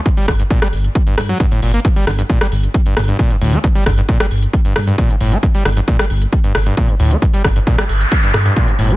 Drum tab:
HH |xxoxxxoxxxoxxxox|xxoxxxoxxxoxxxox|xxoxxxoxxxoxxxox|xxoxxxoxxxoxxxox|
SD |--r--r----r-----|--r--r----r-----|--r--r----r-----|--r--r----r-----|
BD |o-o-o---o---o---|o---o---o---o---|o-o-o---o---o---|o---o---o---o---|

HH |xxoxxxoxxxoxxxox|
SD |--r--r----r-----|
BD |o-o-o---o---o---|